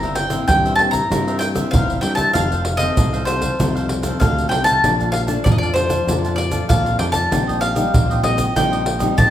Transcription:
Already playing: fingered electric bass G1, nylon-string guitar G2 E3 A#3 C4, mandolin A#5
0.03 cavaquinho A#4 C5 E5, pandeiro, shaker, surdo
0.15 mandolin G5, muted cavaquinho stroke, pandeiro
0.30 nylon-string guitar E3 A#3 C4, cavaquinho A#4 C5 E5, pandeiro, shaker
0.48 nylon-string guitar G2, fingered electric bass G2, cavaquinho E4 A#4 C5 E5, mandolin G5, pandeiro, shaker, surdo
0.65 cavaquinho A#4 C5 E5, pandeiro, shaker
0.76 nylon-string guitar E3 A#3 C4, mandolin A5, pandeiro
0.91 cavaquinho A#4 C5 E5, mandolin A#5, pandeiro, shaker, surdo
1.10 fingered electric bass G2, nylon-string guitar G2 E3 A#3 C4, cavaquinho E4 A#4 C5 E5, pandeiro, shaker, surdo
1.27 cavaquinho A#4 C5 E5, pandeiro, shaker
1.39 mandolin G5, muted cavaquinho stroke, pandeiro, shaker
1.55 nylon-string guitar E3 A#3 C4, cavaquinho A#4 C5 E5, pandeiro, shaker, surdo
1.71 fingered electric bass G1, nylon-string guitar G2, cavaquinho E4 A#4, mandolin F5, pandeiro, shaker, surdo
1.75 cavaquinho C5 E5
1.90 pandeiro, shaker
2.01 fingered electric bass G2, nylon-string guitar E3 A#3 C4, cavaquinho E4 A#4 C5 E5, mandolin G5, pandeiro
2.15 cavaquinho A#4 C5 E5, mandolin A5, pandeiro, shaker, surdo
2.33 fingered electric bass F1, nylon-string guitar F2 D#3 A3 C4, cavaquinho D#4 A4 C5 F5, mandolin F5, pandeiro, shaker, surdo
2.51 cavaquinho A4 C5 F5, pandeiro, shaker, surdo
2.65 muted cavaquinho stroke, pandeiro
2.77 nylon-string guitar D#3 A3 C4, cavaquinho A4 C5 F5, mandolin D#5, pandeiro, shaker
2.97 fingered electric bass C2, nylon-string guitar C3, cavaquinho D#4 A4 C5 F5, pandeiro, shaker, surdo
3.13 cavaquinho A4 C5 F5, pandeiro, shaker
3.25 nylon-string guitar D#3 A3 C4, mandolin C5, pandeiro, shaker
3.41 cavaquinho A4 C5 F5, pandeiro, shaker, surdo
3.59 fingered electric bass C2, nylon-string guitar F2 D#3 A3 C4, cavaquinho D#4 A4 C5 F5, pandeiro, shaker, surdo
3.75 cavaquinho A4 C5 F5, pandeiro, shaker
3.89 muted cavaquinho stroke, pandeiro
4.02 nylon-string guitar D#3 A3 C4, cavaquinho A4 C5 F5, pandeiro, shaker, surdo
4.20 fingered electric bass D2, nylon-string guitar C3, cavaquinho D#4 A4 C5 F5, mandolin F5, pandeiro, shaker, surdo
4.38 pandeiro, shaker
4.49 fingered electric bass C2, nylon-string guitar D#3 A3 C4, cavaquinho D#4 A4 C5 F5, mandolin G5, pandeiro
4.64 cavaquinho A4 C5 F5, mandolin A5, pandeiro, shaker, surdo
4.83 fingered electric bass A#1, nylon-string guitar A#2 F3 A3 D4, cavaquinho A#4 D5 F5 A5, pandeiro, shaker, surdo
5.00 cavaquinho D5 F5 A5, pandeiro, shaker, surdo
5.12 mandolin F5, muted cavaquinho stroke, pandeiro
5.27 nylon-string guitar F3 A3 D4, cavaquinho D5 F5 A5, pandeiro, shaker
5.44 nylon-string guitar F2, fingered electric bass F2, cavaquinho A#4 D5 F5 A5, mandolin D5, pandeiro, shaker, surdo
5.52 mandolin D#5
5.58 mandolin D5, cavaquinho A5
5.63 cavaquinho D5 F5, pandeiro, shaker
5.74 nylon-string guitar F3 A3 D4, mandolin C5, pandeiro, shaker
5.89 cavaquinho D5 F5 A5, pandeiro, shaker, surdo
6.07 fingered electric bass F2, nylon-string guitar A#2 F3 A3 D4, cavaquinho A#4 D5 F5 A5, pandeiro, shaker, surdo
6.24 cavaquinho D5 F5 A5, pandeiro, shaker
6.36 mandolin D5, muted cavaquinho stroke, pandeiro
6.51 nylon-string guitar F3 A3 D4, cavaquinho D5 F5 A5, pandeiro, shaker, surdo
6.69 fingered electric bass A#1, nylon-string guitar F2, cavaquinho A#4 D5 F5 A5, mandolin F5, pandeiro, shaker, surdo
6.86 pandeiro, shaker
6.99 fingered electric bass F2, nylon-string guitar F3 A3 D4, cavaquinho A#4 D5 F5 A5, mandolin G5, pandeiro
7.12 cavaquinho D5 F5 A5, mandolin A5, pandeiro, shaker, surdo
7.31 fingered electric bass A#1, nylon-string guitar A#2 G3 C4 D#4, cavaquinho D#4 G4 C5 D#5, pandeiro, shaker, surdo
7.47 cavaquinho G4 C5 D#5, pandeiro, shaker, surdo
7.61 mandolin F5, muted cavaquinho stroke, pandeiro
7.74 nylon-string guitar G3 C4 D#4, cavaquinho G4 C5 D#5, pandeiro, shaker
7.93 fingered electric bass A#1, nylon-string guitar A#2, cavaquinho D#4 G4 C5 D#5, pandeiro, shaker, surdo
8.10 cavaquinho G4 C5 D#5, pandeiro, shaker
8.24 nylon-string guitar G3 C4 D#4, mandolin D#5, pandeiro
8.37 cavaquinho G4 C5 D#5, pandeiro, shaker, surdo
8.56 fingered electric bass A#1, nylon-string guitar A#2 G3 C4 D#4, cavaquinho D#4 G4 C5 D#5, mandolin G5, pandeiro, shaker, surdo
8.72 cavaquinho G4 C5 D#5, pandeiro, shaker
8.85 muted cavaquinho stroke, pandeiro
8.99 nylon-string guitar G3 C4 D#4, cavaquinho G4 C5 D#5, pandeiro, shaker, surdo
9.17 fingered electric bass A#1, cavaquinho D#4 G4 C5 D#5, mandolin A5, pandeiro, shaker, surdo

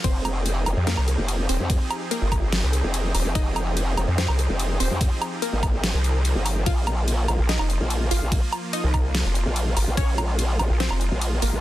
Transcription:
0.04 wobble bass F1, supersaw synth F3 C4 D#4 G4 G#4, synth pluck C4 C5, kick, closed hi-hat, ride
0.25 closed hi-hat, low woodblock
0.46 closed hi-hat, ride
0.66 wobble bass F1, closed hi-hat, low woodblock
0.77 wobble bass F2
0.87 synth pluck A#3 A#4, snare, closed hi-hat, ride
0.97 wobble bass C2, low woodblock
1.08 closed hi-hat
1.18 wobble bass F1
1.28 closed hi-hat, ride
1.49 wobble bass D#1, synth pluck C4 C5, open hi-hat
1.59 wobble bass F2
1.70 kick, closed hi-hat, ride
1.91 closed hi-hat, low woodblock
2.11 synth pluck A#3 A#4, closed hi-hat, ride
2.22 wobble bass G1
2.32 kick, closed hi-hat, low woodblock
2.52 snare, closed hi-hat, ride
2.63 wobble bass C2
2.73 closed hi-hat
2.84 wobble bass F1
2.94 closed hi-hat, ride
3.15 wobble bass D#1, open hi-hat, low woodblock
3.25 wobble bass F1
3.35 wobble bass F1, synth pluck D#4 D#5, kick, closed hi-hat, ride
3.56 closed hi-hat, low woodblock
3.77 closed hi-hat, ride
3.97 wobble bass F1, closed hi-hat, low woodblock
4.08 wobble bass F2
4.18 synth pluck C4 C5, snare, closed hi-hat, ride
4.28 wobble bass C2, low woodblock
4.39 closed hi-hat
4.49 wobble bass F1
4.60 closed hi-hat, ride
4.80 wobble bass D#1, synth pluck C4 C5, open hi-hat
4.90 wobble bass F2
5.01 kick, closed hi-hat, ride
5.22 closed hi-hat, low woodblock
5.42 synth pluck A#3 A#4, closed hi-hat, ride
5.53 wobble bass G#1
5.63 kick, closed hi-hat, low woodblock
5.84 snare, closed hi-hat, ride
5.94 wobble bass C2
6.04 closed hi-hat
6.25 closed hi-hat, ride
6.35 wobble bass G1
6.46 open hi-hat, low woodblock
6.66 wobble bass A#1, supersaw synth A#3 F4, synth pluck F4 F5, kick, closed hi-hat, ride
6.87 closed hi-hat, low woodblock
7.08 closed hi-hat, ride
7.28 wobble bass A#1, closed hi-hat, low woodblock
7.39 wobble bass A#1
7.49 synth pluck D#4 D#5, snare, closed hi-hat, ride
7.59 wobble bass F1, low woodblock
7.70 closed hi-hat
7.80 wobble bass A#1
7.90 closed hi-hat, ride
8.11 wobble bass G#1, synth pluck F4 F5, open hi-hat
8.22 wobble bass A#1
8.32 kick, closed hi-hat, ride
8.53 closed hi-hat, low woodblock
8.73 synth pluck D#4 D#5, closed hi-hat, ride
8.84 wobble bass C2
8.94 kick, closed hi-hat, low woodblock
9.15 snare, closed hi-hat, ride
9.25 wobble bass F1
9.35 closed hi-hat
9.46 wobble bass A#1
9.56 closed hi-hat, ride
9.77 wobble bass G#1, open hi-hat, low woodblock
9.87 wobble bass A#1
9.97 wobble bass A#1, supersaw synth G#3, synth pluck C#4 C#5, kick, closed hi-hat, ride
10.18 closed hi-hat, low woodblock
10.39 closed hi-hat, ride
10.59 wobble bass A#1, closed hi-hat, low woodblock
10.70 wobble bass A#1
10.80 synth pluck C4 C5, snare, closed hi-hat, ride
10.91 wobble bass F1, low woodblock
11.01 closed hi-hat
11.11 wobble bass A#1
11.21 closed hi-hat, ride
11.42 wobble bass G#1, synth pluck A#3 A#4, open hi-hat
11.53 wobble bass A#1

